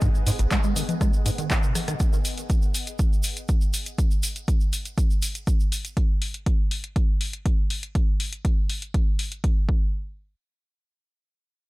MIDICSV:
0, 0, Header, 1, 4, 480
1, 0, Start_track
1, 0, Key_signature, 5, "minor"
1, 0, Tempo, 495868
1, 16, Time_signature, 4, 2, 24, 8
1, 11316, End_track
2, 0, Start_track
2, 0, Title_t, "Ambient pad"
2, 0, Program_c, 0, 92
2, 0, Note_on_c, 0, 59, 82
2, 0, Note_on_c, 0, 68, 77
2, 0, Note_on_c, 0, 75, 78
2, 0, Note_on_c, 0, 78, 93
2, 1937, Note_off_c, 0, 68, 0
2, 1937, Note_off_c, 0, 78, 0
2, 1938, Note_off_c, 0, 59, 0
2, 1938, Note_off_c, 0, 75, 0
2, 11316, End_track
3, 0, Start_track
3, 0, Title_t, "Acid bass"
3, 0, Program_c, 1, 38
3, 16, Note_on_c, 1, 44, 102
3, 83, Note_off_c, 1, 44, 0
3, 256, Note_on_c, 1, 44, 99
3, 296, Note_off_c, 1, 44, 0
3, 379, Note_on_c, 1, 32, 97
3, 444, Note_off_c, 1, 32, 0
3, 496, Note_on_c, 1, 56, 86
3, 564, Note_off_c, 1, 56, 0
3, 618, Note_on_c, 1, 56, 75
3, 716, Note_off_c, 1, 56, 0
3, 737, Note_on_c, 1, 51, 77
3, 804, Note_off_c, 1, 51, 0
3, 977, Note_on_c, 1, 56, 83
3, 1078, Note_off_c, 1, 56, 0
3, 1217, Note_on_c, 1, 44, 101
3, 1257, Note_off_c, 1, 44, 0
3, 1339, Note_on_c, 1, 51, 75
3, 1579, Note_on_c, 1, 47, 75
3, 1594, Note_off_c, 1, 51, 0
3, 1676, Note_off_c, 1, 47, 0
3, 1819, Note_on_c, 1, 51, 74
3, 1884, Note_off_c, 1, 51, 0
3, 11316, End_track
4, 0, Start_track
4, 0, Title_t, "Drums"
4, 13, Note_on_c, 9, 82, 57
4, 17, Note_on_c, 9, 36, 114
4, 17, Note_on_c, 9, 42, 48
4, 109, Note_off_c, 9, 82, 0
4, 114, Note_off_c, 9, 36, 0
4, 114, Note_off_c, 9, 42, 0
4, 143, Note_on_c, 9, 82, 36
4, 240, Note_off_c, 9, 82, 0
4, 257, Note_on_c, 9, 46, 101
4, 260, Note_on_c, 9, 82, 91
4, 354, Note_off_c, 9, 46, 0
4, 357, Note_off_c, 9, 82, 0
4, 376, Note_on_c, 9, 82, 40
4, 379, Note_on_c, 9, 42, 61
4, 473, Note_off_c, 9, 82, 0
4, 476, Note_off_c, 9, 42, 0
4, 495, Note_on_c, 9, 82, 48
4, 497, Note_on_c, 9, 36, 116
4, 497, Note_on_c, 9, 42, 48
4, 498, Note_on_c, 9, 39, 114
4, 591, Note_off_c, 9, 82, 0
4, 594, Note_off_c, 9, 36, 0
4, 594, Note_off_c, 9, 42, 0
4, 595, Note_off_c, 9, 39, 0
4, 615, Note_on_c, 9, 82, 38
4, 712, Note_off_c, 9, 82, 0
4, 737, Note_on_c, 9, 46, 105
4, 739, Note_on_c, 9, 82, 98
4, 834, Note_off_c, 9, 46, 0
4, 836, Note_off_c, 9, 82, 0
4, 860, Note_on_c, 9, 42, 58
4, 860, Note_on_c, 9, 64, 89
4, 862, Note_on_c, 9, 82, 36
4, 956, Note_off_c, 9, 42, 0
4, 956, Note_off_c, 9, 64, 0
4, 959, Note_off_c, 9, 82, 0
4, 977, Note_on_c, 9, 36, 121
4, 977, Note_on_c, 9, 37, 62
4, 977, Note_on_c, 9, 42, 49
4, 981, Note_on_c, 9, 82, 51
4, 1074, Note_off_c, 9, 36, 0
4, 1074, Note_off_c, 9, 37, 0
4, 1074, Note_off_c, 9, 42, 0
4, 1078, Note_off_c, 9, 82, 0
4, 1096, Note_on_c, 9, 82, 33
4, 1193, Note_off_c, 9, 82, 0
4, 1217, Note_on_c, 9, 46, 101
4, 1221, Note_on_c, 9, 82, 97
4, 1314, Note_off_c, 9, 46, 0
4, 1318, Note_off_c, 9, 82, 0
4, 1339, Note_on_c, 9, 42, 61
4, 1343, Note_on_c, 9, 82, 36
4, 1436, Note_off_c, 9, 42, 0
4, 1440, Note_off_c, 9, 82, 0
4, 1457, Note_on_c, 9, 36, 117
4, 1457, Note_on_c, 9, 42, 47
4, 1458, Note_on_c, 9, 39, 112
4, 1458, Note_on_c, 9, 82, 55
4, 1554, Note_off_c, 9, 36, 0
4, 1554, Note_off_c, 9, 42, 0
4, 1555, Note_off_c, 9, 39, 0
4, 1555, Note_off_c, 9, 82, 0
4, 1578, Note_on_c, 9, 82, 39
4, 1675, Note_off_c, 9, 82, 0
4, 1697, Note_on_c, 9, 37, 59
4, 1697, Note_on_c, 9, 46, 106
4, 1697, Note_on_c, 9, 64, 81
4, 1699, Note_on_c, 9, 82, 84
4, 1794, Note_off_c, 9, 37, 0
4, 1794, Note_off_c, 9, 46, 0
4, 1794, Note_off_c, 9, 64, 0
4, 1796, Note_off_c, 9, 82, 0
4, 1818, Note_on_c, 9, 82, 39
4, 1819, Note_on_c, 9, 37, 61
4, 1819, Note_on_c, 9, 42, 63
4, 1915, Note_off_c, 9, 82, 0
4, 1916, Note_off_c, 9, 37, 0
4, 1916, Note_off_c, 9, 42, 0
4, 1932, Note_on_c, 9, 82, 48
4, 1937, Note_on_c, 9, 36, 110
4, 1937, Note_on_c, 9, 42, 51
4, 2029, Note_off_c, 9, 82, 0
4, 2034, Note_off_c, 9, 36, 0
4, 2034, Note_off_c, 9, 42, 0
4, 2061, Note_on_c, 9, 82, 36
4, 2158, Note_off_c, 9, 82, 0
4, 2177, Note_on_c, 9, 46, 95
4, 2178, Note_on_c, 9, 82, 88
4, 2274, Note_off_c, 9, 46, 0
4, 2275, Note_off_c, 9, 82, 0
4, 2299, Note_on_c, 9, 42, 62
4, 2304, Note_on_c, 9, 82, 39
4, 2396, Note_off_c, 9, 42, 0
4, 2401, Note_off_c, 9, 82, 0
4, 2417, Note_on_c, 9, 36, 112
4, 2417, Note_on_c, 9, 42, 51
4, 2417, Note_on_c, 9, 82, 49
4, 2513, Note_off_c, 9, 82, 0
4, 2514, Note_off_c, 9, 36, 0
4, 2514, Note_off_c, 9, 42, 0
4, 2536, Note_on_c, 9, 82, 35
4, 2633, Note_off_c, 9, 82, 0
4, 2657, Note_on_c, 9, 46, 106
4, 2660, Note_on_c, 9, 82, 95
4, 2754, Note_off_c, 9, 46, 0
4, 2757, Note_off_c, 9, 82, 0
4, 2779, Note_on_c, 9, 42, 58
4, 2780, Note_on_c, 9, 82, 39
4, 2876, Note_off_c, 9, 42, 0
4, 2877, Note_off_c, 9, 82, 0
4, 2892, Note_on_c, 9, 82, 51
4, 2897, Note_on_c, 9, 36, 120
4, 2898, Note_on_c, 9, 42, 48
4, 2989, Note_off_c, 9, 82, 0
4, 2994, Note_off_c, 9, 36, 0
4, 2994, Note_off_c, 9, 42, 0
4, 3028, Note_on_c, 9, 82, 32
4, 3125, Note_off_c, 9, 82, 0
4, 3128, Note_on_c, 9, 82, 91
4, 3137, Note_on_c, 9, 46, 97
4, 3224, Note_off_c, 9, 82, 0
4, 3234, Note_off_c, 9, 46, 0
4, 3259, Note_on_c, 9, 82, 35
4, 3260, Note_on_c, 9, 42, 62
4, 3356, Note_off_c, 9, 82, 0
4, 3357, Note_off_c, 9, 42, 0
4, 3374, Note_on_c, 9, 82, 46
4, 3377, Note_on_c, 9, 36, 109
4, 3378, Note_on_c, 9, 42, 47
4, 3471, Note_off_c, 9, 82, 0
4, 3474, Note_off_c, 9, 36, 0
4, 3475, Note_off_c, 9, 42, 0
4, 3496, Note_on_c, 9, 82, 36
4, 3593, Note_off_c, 9, 82, 0
4, 3616, Note_on_c, 9, 82, 88
4, 3618, Note_on_c, 9, 46, 96
4, 3713, Note_off_c, 9, 82, 0
4, 3714, Note_off_c, 9, 46, 0
4, 3734, Note_on_c, 9, 82, 41
4, 3740, Note_on_c, 9, 42, 59
4, 3831, Note_off_c, 9, 82, 0
4, 3836, Note_off_c, 9, 42, 0
4, 3857, Note_on_c, 9, 36, 110
4, 3857, Note_on_c, 9, 42, 50
4, 3860, Note_on_c, 9, 82, 48
4, 3954, Note_off_c, 9, 36, 0
4, 3954, Note_off_c, 9, 42, 0
4, 3957, Note_off_c, 9, 82, 0
4, 3978, Note_on_c, 9, 82, 35
4, 4075, Note_off_c, 9, 82, 0
4, 4095, Note_on_c, 9, 82, 83
4, 4097, Note_on_c, 9, 46, 93
4, 4192, Note_off_c, 9, 82, 0
4, 4194, Note_off_c, 9, 46, 0
4, 4219, Note_on_c, 9, 82, 38
4, 4220, Note_on_c, 9, 42, 63
4, 4316, Note_off_c, 9, 82, 0
4, 4317, Note_off_c, 9, 42, 0
4, 4337, Note_on_c, 9, 36, 105
4, 4338, Note_on_c, 9, 42, 53
4, 4340, Note_on_c, 9, 82, 50
4, 4434, Note_off_c, 9, 36, 0
4, 4435, Note_off_c, 9, 42, 0
4, 4437, Note_off_c, 9, 82, 0
4, 4457, Note_on_c, 9, 82, 34
4, 4554, Note_off_c, 9, 82, 0
4, 4577, Note_on_c, 9, 46, 100
4, 4579, Note_on_c, 9, 82, 85
4, 4674, Note_off_c, 9, 46, 0
4, 4676, Note_off_c, 9, 82, 0
4, 4700, Note_on_c, 9, 42, 60
4, 4700, Note_on_c, 9, 82, 36
4, 4796, Note_off_c, 9, 42, 0
4, 4797, Note_off_c, 9, 82, 0
4, 4817, Note_on_c, 9, 36, 113
4, 4817, Note_on_c, 9, 42, 50
4, 4820, Note_on_c, 9, 82, 48
4, 4914, Note_off_c, 9, 36, 0
4, 4914, Note_off_c, 9, 42, 0
4, 4917, Note_off_c, 9, 82, 0
4, 4941, Note_on_c, 9, 82, 33
4, 5038, Note_off_c, 9, 82, 0
4, 5056, Note_on_c, 9, 82, 80
4, 5058, Note_on_c, 9, 46, 92
4, 5153, Note_off_c, 9, 82, 0
4, 5154, Note_off_c, 9, 46, 0
4, 5177, Note_on_c, 9, 82, 36
4, 5180, Note_on_c, 9, 42, 62
4, 5274, Note_off_c, 9, 82, 0
4, 5276, Note_off_c, 9, 42, 0
4, 5297, Note_on_c, 9, 36, 109
4, 5297, Note_on_c, 9, 42, 50
4, 5299, Note_on_c, 9, 82, 50
4, 5394, Note_off_c, 9, 36, 0
4, 5394, Note_off_c, 9, 42, 0
4, 5396, Note_off_c, 9, 82, 0
4, 5421, Note_on_c, 9, 82, 36
4, 5518, Note_off_c, 9, 82, 0
4, 5538, Note_on_c, 9, 46, 99
4, 5544, Note_on_c, 9, 82, 81
4, 5634, Note_off_c, 9, 46, 0
4, 5641, Note_off_c, 9, 82, 0
4, 5659, Note_on_c, 9, 42, 64
4, 5665, Note_on_c, 9, 82, 37
4, 5756, Note_off_c, 9, 42, 0
4, 5761, Note_off_c, 9, 82, 0
4, 5777, Note_on_c, 9, 36, 105
4, 5777, Note_on_c, 9, 42, 50
4, 5874, Note_off_c, 9, 36, 0
4, 5874, Note_off_c, 9, 42, 0
4, 6017, Note_on_c, 9, 46, 88
4, 6114, Note_off_c, 9, 46, 0
4, 6139, Note_on_c, 9, 42, 64
4, 6236, Note_off_c, 9, 42, 0
4, 6257, Note_on_c, 9, 36, 104
4, 6257, Note_on_c, 9, 42, 53
4, 6354, Note_off_c, 9, 36, 0
4, 6354, Note_off_c, 9, 42, 0
4, 6497, Note_on_c, 9, 46, 99
4, 6594, Note_off_c, 9, 46, 0
4, 6619, Note_on_c, 9, 42, 60
4, 6716, Note_off_c, 9, 42, 0
4, 6737, Note_on_c, 9, 36, 114
4, 6737, Note_on_c, 9, 42, 52
4, 6834, Note_off_c, 9, 36, 0
4, 6834, Note_off_c, 9, 42, 0
4, 6977, Note_on_c, 9, 46, 87
4, 7074, Note_off_c, 9, 46, 0
4, 7099, Note_on_c, 9, 42, 63
4, 7196, Note_off_c, 9, 42, 0
4, 7217, Note_on_c, 9, 36, 104
4, 7217, Note_on_c, 9, 42, 51
4, 7314, Note_off_c, 9, 36, 0
4, 7314, Note_off_c, 9, 42, 0
4, 7457, Note_on_c, 9, 46, 96
4, 7554, Note_off_c, 9, 46, 0
4, 7579, Note_on_c, 9, 42, 67
4, 7676, Note_off_c, 9, 42, 0
4, 7697, Note_on_c, 9, 36, 108
4, 7697, Note_on_c, 9, 42, 52
4, 7794, Note_off_c, 9, 36, 0
4, 7794, Note_off_c, 9, 42, 0
4, 7937, Note_on_c, 9, 46, 96
4, 8034, Note_off_c, 9, 46, 0
4, 8059, Note_on_c, 9, 42, 66
4, 8156, Note_off_c, 9, 42, 0
4, 8177, Note_on_c, 9, 36, 102
4, 8177, Note_on_c, 9, 42, 53
4, 8274, Note_off_c, 9, 36, 0
4, 8274, Note_off_c, 9, 42, 0
4, 8417, Note_on_c, 9, 46, 92
4, 8514, Note_off_c, 9, 46, 0
4, 8539, Note_on_c, 9, 42, 64
4, 8636, Note_off_c, 9, 42, 0
4, 8657, Note_on_c, 9, 36, 108
4, 8657, Note_on_c, 9, 42, 52
4, 8754, Note_off_c, 9, 36, 0
4, 8754, Note_off_c, 9, 42, 0
4, 8897, Note_on_c, 9, 46, 91
4, 8994, Note_off_c, 9, 46, 0
4, 9019, Note_on_c, 9, 42, 66
4, 9116, Note_off_c, 9, 42, 0
4, 9137, Note_on_c, 9, 36, 104
4, 9137, Note_on_c, 9, 42, 52
4, 9234, Note_off_c, 9, 36, 0
4, 9234, Note_off_c, 9, 42, 0
4, 9377, Note_on_c, 9, 36, 101
4, 9474, Note_off_c, 9, 36, 0
4, 11316, End_track
0, 0, End_of_file